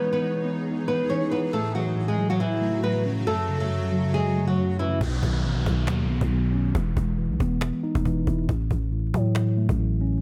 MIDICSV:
0, 0, Header, 1, 7, 480
1, 0, Start_track
1, 0, Tempo, 434783
1, 1691, Time_signature, 4, 2, 24, 8
1, 11275, End_track
2, 0, Start_track
2, 0, Title_t, "Nylon-string guitar"
2, 0, Program_c, 0, 24
2, 0, Note_on_c, 0, 59, 74
2, 0, Note_on_c, 0, 71, 93
2, 117, Note_off_c, 0, 71, 0
2, 122, Note_off_c, 0, 59, 0
2, 139, Note_on_c, 0, 71, 78
2, 148, Note_on_c, 0, 59, 61
2, 696, Note_off_c, 0, 71, 0
2, 701, Note_off_c, 0, 59, 0
2, 970, Note_on_c, 0, 71, 81
2, 979, Note_on_c, 0, 59, 62
2, 1176, Note_off_c, 0, 71, 0
2, 1181, Note_off_c, 0, 59, 0
2, 1210, Note_on_c, 0, 73, 80
2, 1219, Note_on_c, 0, 61, 60
2, 1416, Note_off_c, 0, 73, 0
2, 1421, Note_off_c, 0, 61, 0
2, 1451, Note_on_c, 0, 71, 70
2, 1460, Note_on_c, 0, 59, 57
2, 1656, Note_off_c, 0, 71, 0
2, 1661, Note_off_c, 0, 59, 0
2, 1691, Note_on_c, 0, 69, 79
2, 1700, Note_on_c, 0, 57, 53
2, 1896, Note_off_c, 0, 69, 0
2, 1901, Note_off_c, 0, 57, 0
2, 1930, Note_on_c, 0, 66, 74
2, 1939, Note_on_c, 0, 54, 56
2, 2276, Note_off_c, 0, 66, 0
2, 2281, Note_off_c, 0, 54, 0
2, 2298, Note_on_c, 0, 68, 72
2, 2306, Note_on_c, 0, 56, 52
2, 2503, Note_off_c, 0, 68, 0
2, 2508, Note_off_c, 0, 56, 0
2, 2537, Note_on_c, 0, 66, 81
2, 2545, Note_on_c, 0, 54, 61
2, 2634, Note_off_c, 0, 66, 0
2, 2639, Note_off_c, 0, 54, 0
2, 2650, Note_on_c, 0, 64, 87
2, 2659, Note_on_c, 0, 52, 68
2, 3102, Note_off_c, 0, 64, 0
2, 3107, Note_off_c, 0, 52, 0
2, 3129, Note_on_c, 0, 71, 72
2, 3138, Note_on_c, 0, 59, 58
2, 3335, Note_off_c, 0, 71, 0
2, 3340, Note_off_c, 0, 59, 0
2, 3610, Note_on_c, 0, 69, 104
2, 3619, Note_on_c, 0, 57, 72
2, 3956, Note_off_c, 0, 69, 0
2, 3960, Note_off_c, 0, 57, 0
2, 3978, Note_on_c, 0, 69, 81
2, 3986, Note_on_c, 0, 57, 64
2, 4535, Note_off_c, 0, 69, 0
2, 4540, Note_off_c, 0, 57, 0
2, 4570, Note_on_c, 0, 68, 87
2, 4579, Note_on_c, 0, 56, 67
2, 4916, Note_off_c, 0, 68, 0
2, 4920, Note_off_c, 0, 56, 0
2, 4940, Note_on_c, 0, 66, 67
2, 4948, Note_on_c, 0, 54, 53
2, 5271, Note_off_c, 0, 66, 0
2, 5275, Note_off_c, 0, 54, 0
2, 5291, Note_on_c, 0, 64, 73
2, 5300, Note_on_c, 0, 52, 55
2, 5496, Note_off_c, 0, 64, 0
2, 5501, Note_off_c, 0, 52, 0
2, 11275, End_track
3, 0, Start_track
3, 0, Title_t, "Ambient pad"
3, 0, Program_c, 1, 92
3, 0, Note_on_c, 1, 52, 79
3, 0, Note_on_c, 1, 63, 70
3, 0, Note_on_c, 1, 68, 87
3, 1653, Note_off_c, 1, 63, 0
3, 1672, Note_off_c, 1, 52, 0
3, 1672, Note_off_c, 1, 68, 0
3, 1692, Note_on_c, 1, 49, 79
3, 1692, Note_on_c, 1, 54, 75
3, 1692, Note_on_c, 1, 66, 88
3, 5493, Note_off_c, 1, 49, 0
3, 5493, Note_off_c, 1, 54, 0
3, 5493, Note_off_c, 1, 66, 0
3, 11275, End_track
4, 0, Start_track
4, 0, Title_t, "Tine electric piano"
4, 0, Program_c, 2, 4
4, 0, Control_c, 2, 64, 127
4, 0, Note_on_c, 2, 52, 85
4, 10, Note_on_c, 2, 56, 73
4, 236, Note_off_c, 2, 52, 0
4, 250, Note_on_c, 2, 52, 67
4, 491, Note_on_c, 2, 59, 85
4, 968, Note_on_c, 2, 63, 78
4, 1199, Note_off_c, 2, 52, 0
4, 1211, Note_off_c, 2, 56, 0
4, 1213, Note_on_c, 2, 52, 85
4, 1452, Note_on_c, 2, 64, 74
4, 1690, Note_off_c, 2, 63, 0
4, 1691, Note_off_c, 2, 59, 0
4, 1692, Note_off_c, 2, 52, 0
4, 1692, Note_off_c, 2, 64, 0
4, 1692, Note_on_c, 2, 45, 83
4, 1704, Control_c, 2, 64, 0
4, 1929, Control_c, 2, 64, 127
4, 1933, Note_on_c, 2, 52, 74
4, 2156, Note_off_c, 2, 45, 0
4, 2169, Note_on_c, 2, 45, 71
4, 2409, Note_on_c, 2, 54, 92
4, 2889, Note_on_c, 2, 57, 83
4, 3118, Note_off_c, 2, 45, 0
4, 3131, Note_on_c, 2, 45, 92
4, 3132, Note_off_c, 2, 52, 0
4, 3373, Note_on_c, 2, 61, 83
4, 3610, Note_off_c, 2, 54, 0
4, 3610, Note_off_c, 2, 57, 0
4, 3610, Note_on_c, 2, 42, 90
4, 3611, Note_off_c, 2, 45, 0
4, 3612, Note_off_c, 2, 61, 0
4, 3624, Control_c, 2, 64, 0
4, 3797, Control_c, 2, 64, 127
4, 3852, Note_on_c, 2, 49, 73
4, 4078, Note_off_c, 2, 42, 0
4, 4091, Note_on_c, 2, 42, 70
4, 4333, Note_on_c, 2, 54, 92
4, 4811, Note_on_c, 2, 57, 71
4, 5041, Note_off_c, 2, 42, 0
4, 5052, Note_off_c, 2, 49, 0
4, 5054, Note_on_c, 2, 42, 86
4, 5292, Note_on_c, 2, 61, 80
4, 5531, Note_off_c, 2, 57, 0
4, 5532, Note_off_c, 2, 54, 0
4, 5532, Note_off_c, 2, 61, 0
4, 5533, Note_off_c, 2, 42, 0
4, 5546, Control_c, 2, 64, 0
4, 5759, Control_c, 2, 64, 127
4, 5771, Note_on_c, 2, 51, 78
4, 6011, Note_on_c, 2, 47, 75
4, 6250, Note_on_c, 2, 54, 94
4, 6730, Note_on_c, 2, 59, 78
4, 6956, Note_off_c, 2, 47, 0
4, 6969, Note_on_c, 2, 47, 91
4, 6971, Note_off_c, 2, 51, 0
4, 7209, Note_on_c, 2, 61, 87
4, 7450, Note_off_c, 2, 47, 0
4, 7450, Note_off_c, 2, 59, 0
4, 7450, Note_off_c, 2, 61, 0
4, 7451, Note_off_c, 2, 54, 0
4, 7451, Note_on_c, 2, 52, 89
4, 7463, Control_c, 2, 64, 0
4, 7676, Control_c, 2, 64, 127
4, 7691, Note_on_c, 2, 56, 77
4, 7917, Note_off_c, 2, 52, 0
4, 7930, Note_on_c, 2, 52, 71
4, 8172, Note_on_c, 2, 59, 85
4, 8649, Note_on_c, 2, 63, 83
4, 8880, Note_off_c, 2, 52, 0
4, 8891, Note_off_c, 2, 56, 0
4, 8894, Note_on_c, 2, 52, 89
4, 9133, Note_on_c, 2, 64, 80
4, 9370, Note_off_c, 2, 63, 0
4, 9372, Note_off_c, 2, 52, 0
4, 9372, Note_off_c, 2, 59, 0
4, 9372, Note_off_c, 2, 64, 0
4, 9372, Note_on_c, 2, 45, 85
4, 9385, Control_c, 2, 64, 0
4, 9545, Control_c, 2, 64, 127
4, 9613, Note_on_c, 2, 52, 78
4, 9834, Note_off_c, 2, 45, 0
4, 9848, Note_on_c, 2, 45, 74
4, 10089, Note_on_c, 2, 54, 100
4, 10570, Note_on_c, 2, 57, 86
4, 10798, Note_off_c, 2, 45, 0
4, 10812, Note_off_c, 2, 52, 0
4, 10812, Note_on_c, 2, 45, 93
4, 11054, Note_on_c, 2, 61, 81
4, 11275, Note_off_c, 2, 45, 0
4, 11275, Note_off_c, 2, 54, 0
4, 11275, Note_off_c, 2, 57, 0
4, 11275, Note_off_c, 2, 61, 0
4, 11275, End_track
5, 0, Start_track
5, 0, Title_t, "808-style bass"
5, 0, Program_c, 3, 38
5, 5531, Note_on_c, 3, 35, 113
5, 5762, Note_off_c, 3, 35, 0
5, 5771, Note_on_c, 3, 35, 109
5, 6012, Note_on_c, 3, 33, 99
5, 6028, Note_off_c, 3, 35, 0
5, 6139, Note_on_c, 3, 35, 104
5, 6155, Note_off_c, 3, 33, 0
5, 6246, Note_off_c, 3, 35, 0
5, 6252, Note_on_c, 3, 35, 110
5, 6493, Note_on_c, 3, 39, 101
5, 6509, Note_off_c, 3, 35, 0
5, 6676, Note_on_c, 3, 35, 100
5, 6692, Note_off_c, 3, 39, 0
5, 6850, Note_off_c, 3, 35, 0
5, 6858, Note_on_c, 3, 35, 101
5, 7427, Note_off_c, 3, 35, 0
5, 7452, Note_on_c, 3, 28, 117
5, 7682, Note_off_c, 3, 28, 0
5, 7692, Note_on_c, 3, 28, 103
5, 8059, Note_on_c, 3, 35, 101
5, 8076, Note_off_c, 3, 28, 0
5, 8166, Note_off_c, 3, 35, 0
5, 8172, Note_on_c, 3, 28, 107
5, 8524, Note_off_c, 3, 28, 0
5, 8779, Note_on_c, 3, 28, 104
5, 9117, Note_off_c, 3, 28, 0
5, 9132, Note_on_c, 3, 28, 102
5, 9362, Note_off_c, 3, 28, 0
5, 9372, Note_on_c, 3, 33, 114
5, 9602, Note_off_c, 3, 33, 0
5, 9612, Note_on_c, 3, 33, 104
5, 10072, Note_off_c, 3, 33, 0
5, 10092, Note_on_c, 3, 45, 108
5, 10674, Note_off_c, 3, 45, 0
5, 10699, Note_on_c, 3, 33, 105
5, 11268, Note_off_c, 3, 33, 0
5, 11275, End_track
6, 0, Start_track
6, 0, Title_t, "Downlifter"
6, 0, Program_c, 4, 103
6, 0, Note_on_c, 4, 60, 85
6, 1691, Note_off_c, 4, 60, 0
6, 5532, Note_on_c, 4, 60, 83
6, 9371, Note_off_c, 4, 60, 0
6, 11275, End_track
7, 0, Start_track
7, 0, Title_t, "Cajon"
7, 5531, Note_on_c, 9, 36, 119
7, 5642, Note_off_c, 9, 36, 0
7, 5771, Note_on_c, 9, 36, 99
7, 5882, Note_off_c, 9, 36, 0
7, 6171, Note_on_c, 9, 38, 39
7, 6252, Note_on_c, 9, 36, 103
7, 6282, Note_off_c, 9, 38, 0
7, 6362, Note_off_c, 9, 36, 0
7, 6378, Note_on_c, 9, 38, 34
7, 6481, Note_off_c, 9, 38, 0
7, 6481, Note_on_c, 9, 38, 101
7, 6491, Note_off_c, 9, 38, 0
7, 6491, Note_on_c, 9, 38, 127
7, 6601, Note_off_c, 9, 38, 0
7, 6616, Note_on_c, 9, 38, 31
7, 6727, Note_off_c, 9, 38, 0
7, 6735, Note_on_c, 9, 38, 44
7, 6846, Note_off_c, 9, 38, 0
7, 6858, Note_on_c, 9, 36, 101
7, 6969, Note_off_c, 9, 36, 0
7, 6970, Note_on_c, 9, 38, 41
7, 7081, Note_off_c, 9, 38, 0
7, 7211, Note_on_c, 9, 38, 27
7, 7275, Note_off_c, 9, 38, 0
7, 7275, Note_on_c, 9, 38, 32
7, 7339, Note_off_c, 9, 38, 0
7, 7339, Note_on_c, 9, 38, 37
7, 7395, Note_off_c, 9, 38, 0
7, 7395, Note_on_c, 9, 38, 44
7, 7451, Note_on_c, 9, 36, 122
7, 7505, Note_off_c, 9, 38, 0
7, 7562, Note_off_c, 9, 36, 0
7, 7580, Note_on_c, 9, 38, 42
7, 7690, Note_off_c, 9, 38, 0
7, 7692, Note_on_c, 9, 36, 99
7, 7802, Note_off_c, 9, 36, 0
7, 7822, Note_on_c, 9, 38, 31
7, 7932, Note_off_c, 9, 38, 0
7, 7932, Note_on_c, 9, 38, 24
7, 8011, Note_off_c, 9, 38, 0
7, 8011, Note_on_c, 9, 38, 32
7, 8091, Note_off_c, 9, 38, 0
7, 8091, Note_on_c, 9, 38, 41
7, 8172, Note_on_c, 9, 36, 107
7, 8202, Note_off_c, 9, 38, 0
7, 8283, Note_off_c, 9, 36, 0
7, 8298, Note_on_c, 9, 38, 34
7, 8402, Note_off_c, 9, 38, 0
7, 8402, Note_on_c, 9, 38, 98
7, 8411, Note_off_c, 9, 38, 0
7, 8411, Note_on_c, 9, 38, 126
7, 8522, Note_off_c, 9, 38, 0
7, 8537, Note_on_c, 9, 38, 32
7, 8647, Note_off_c, 9, 38, 0
7, 8656, Note_on_c, 9, 38, 44
7, 8766, Note_off_c, 9, 38, 0
7, 8779, Note_on_c, 9, 36, 102
7, 8889, Note_off_c, 9, 36, 0
7, 8891, Note_on_c, 9, 36, 96
7, 9002, Note_off_c, 9, 36, 0
7, 9132, Note_on_c, 9, 36, 89
7, 9242, Note_off_c, 9, 36, 0
7, 9260, Note_on_c, 9, 38, 37
7, 9316, Note_off_c, 9, 38, 0
7, 9316, Note_on_c, 9, 38, 43
7, 9372, Note_on_c, 9, 36, 119
7, 9426, Note_off_c, 9, 38, 0
7, 9482, Note_off_c, 9, 36, 0
7, 9500, Note_on_c, 9, 38, 42
7, 9611, Note_off_c, 9, 38, 0
7, 9612, Note_on_c, 9, 36, 101
7, 9722, Note_off_c, 9, 36, 0
7, 9742, Note_on_c, 9, 38, 33
7, 9851, Note_off_c, 9, 38, 0
7, 9851, Note_on_c, 9, 38, 24
7, 9931, Note_off_c, 9, 38, 0
7, 9931, Note_on_c, 9, 38, 32
7, 10012, Note_off_c, 9, 38, 0
7, 10012, Note_on_c, 9, 38, 42
7, 10092, Note_on_c, 9, 36, 106
7, 10122, Note_off_c, 9, 38, 0
7, 10202, Note_off_c, 9, 36, 0
7, 10217, Note_on_c, 9, 38, 34
7, 10321, Note_off_c, 9, 38, 0
7, 10321, Note_on_c, 9, 38, 97
7, 10331, Note_off_c, 9, 38, 0
7, 10331, Note_on_c, 9, 38, 127
7, 10441, Note_off_c, 9, 38, 0
7, 10456, Note_on_c, 9, 38, 31
7, 10567, Note_off_c, 9, 38, 0
7, 10575, Note_on_c, 9, 38, 45
7, 10685, Note_off_c, 9, 38, 0
7, 10699, Note_on_c, 9, 36, 99
7, 10809, Note_off_c, 9, 36, 0
7, 11051, Note_on_c, 9, 38, 26
7, 11115, Note_off_c, 9, 38, 0
7, 11115, Note_on_c, 9, 38, 33
7, 11179, Note_off_c, 9, 38, 0
7, 11179, Note_on_c, 9, 38, 38
7, 11235, Note_off_c, 9, 38, 0
7, 11235, Note_on_c, 9, 38, 44
7, 11275, Note_off_c, 9, 38, 0
7, 11275, End_track
0, 0, End_of_file